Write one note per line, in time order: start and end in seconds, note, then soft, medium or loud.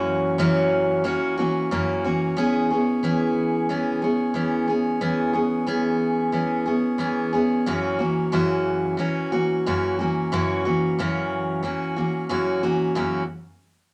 0.00 0.37 F#2 medium
0.00 0.37 C#3 loud
0.00 0.39 E3 medium
0.00 0.38 A#3 loud
0.00 0.39 C#4 loud
0.00 0.39 F#4 loud
0.38 1.05 F#2 medium
0.38 1.05 C#3 medium
0.38 1.03 E3 medium
0.38 1.03 A#3 loud
0.38 1.05 C#4 loud
0.38 1.05 F#4 loud
1.04 1.38 E3 medium
1.04 1.38 A#3 medium
1.04 1.38 C#4 medium
1.04 1.36 F#4 medium
1.38 1.71 E3 soft
1.38 1.71 A#3 medium
1.38 1.71 C#4 medium
1.38 1.71 F#4 medium
1.71 2.04 F#2 medium
1.71 2.04 C#3 medium
1.71 2.05 E3 medium
1.71 2.05 A#3 medium
1.71 2.04 C#4 medium
1.71 2.03 F#4 medium
2.04 2.35 E3 soft
2.04 2.36 A#3 medium
2.04 2.37 C#4 medium
2.04 2.37 F#4 medium
2.36 2.70 E3 medium
2.36 2.70 B3 medium
2.36 2.70 C#4 medium
2.36 2.69 G#4 loud
2.70 3.03 B3 soft
2.70 3.02 C#4 soft
2.70 3.03 G#4 soft
3.03 3.69 E3 medium
3.03 3.69 B3 medium
3.03 3.70 C#4 medium
3.03 3.70 G#4 medium
3.69 4.03 E3 medium
3.69 4.03 B3 medium
3.69 4.02 C#4 medium
3.69 4.01 G#4 medium
4.02 4.34 B3 soft
4.02 4.34 C#4 soft
4.02 4.35 G#4 medium
4.34 4.68 E3 medium
4.34 4.69 B3 medium
4.34 4.68 C#4 medium
4.34 4.66 G#4 medium
4.68 5.00 B3 soft
4.68 5.01 C#4 medium
4.68 5.01 G#4 medium
5.01 5.35 E3 medium
5.01 5.34 B3 medium
5.01 5.33 C#4 medium
5.01 5.32 G#4 medium
5.33 5.66 B3 soft
5.33 5.67 C#4 soft
5.33 5.67 G#4 medium
5.67 6.32 E3 medium
5.67 6.32 B3 medium
5.67 6.34 C#4 medium
5.67 6.34 G#4 loud
6.32 6.67 E3 medium
6.32 6.66 B3 medium
6.32 6.66 C#4 medium
6.32 6.64 G#4 medium
6.66 6.98 B3 soft
6.66 6.99 C#4 soft
6.66 6.99 G#4 medium
6.98 7.33 E3 medium
6.98 7.33 B3 medium
6.98 7.33 C#4 medium
6.98 7.31 G#4 medium
7.33 7.67 B3 soft
7.33 7.66 C#4 medium
7.33 7.66 G#4 medium
7.66 8.00 F#2 medium
7.66 8.00 C#3 medium
7.66 8.00 E3 medium
7.66 7.99 A#3 medium
7.66 7.99 C#4 loud
7.66 7.97 F#4 loud
7.99 8.32 E3 soft
7.99 8.32 A#3 medium
7.99 8.32 C#4 soft
7.99 8.33 F#4 medium
8.32 8.99 F#2 medium
8.32 8.99 C#3 medium
8.32 8.97 E3 loud
8.32 8.98 A#3 medium
8.32 8.99 C#4 medium
8.32 8.99 F#4 loud
8.97 9.31 E3 medium
8.97 9.32 A#3 medium
8.97 9.32 C#4 medium
8.97 9.31 F#4 medium
9.32 9.65 E3 soft
9.32 9.66 A#3 soft
9.32 9.66 C#4 medium
9.32 9.65 F#4 medium
9.66 9.99 F#2 medium
9.66 9.99 C#3 medium
9.66 9.99 E3 medium
9.66 10.00 A#3 medium
9.66 9.99 C#4 medium
9.66 9.98 F#4 medium
9.99 10.31 E3 soft
9.99 10.32 A#3 medium
9.99 10.32 C#4 medium
9.99 10.32 F#4 medium
10.32 10.65 F#2 medium
10.32 10.65 C#3 medium
10.32 10.65 E3 loud
10.32 10.66 A#3 loud
10.32 10.65 C#4 loud
10.32 10.64 F#4 loud
10.65 10.98 E3 soft
10.65 10.99 A#3 medium
10.65 10.99 C#4 medium
10.65 10.98 F#4 medium
10.99 11.64 F#2 medium
10.99 11.65 C#3 medium
10.99 11.62 E3 medium
10.99 11.63 A#3 loud
10.99 11.64 C#4 medium
10.99 11.64 F#4 medium
11.63 11.96 E3 medium
11.63 11.97 A#3 medium
11.63 11.97 C#4 medium
11.63 11.95 F#4 medium
11.96 12.28 E3 soft
11.96 12.29 A#3 medium
11.96 12.29 C#4 soft
11.96 12.30 F#4 medium
12.29 12.63 F#2 medium
12.29 12.63 C#3 medium
12.29 12.63 E3 medium
12.29 12.63 A#3 medium
12.29 12.62 C#4 medium
12.29 12.62 F#4 medium
12.63 12.95 E3 medium
12.63 12.95 A#3 medium
12.63 12.96 C#4 medium
12.63 12.96 F#4 medium
12.95 13.22 F#2 medium
12.95 13.22 C#3 medium
12.95 13.23 E3 medium
12.95 13.22 A#3 medium
12.95 13.23 C#4 medium
12.95 13.23 F#4 medium